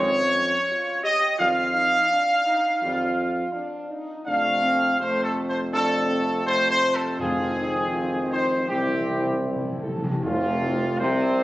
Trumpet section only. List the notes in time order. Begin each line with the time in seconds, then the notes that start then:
Already playing: C#5
1.04 D#5
1.39 F5
4.28 F5
5.00 C5
5.24 A4
5.49 C5
5.74 A4
6.47 C5
6.71 C5
6.95 A4
7.20 G#4
8.33 C5
8.68 G4
10.24 F4
11.00 C5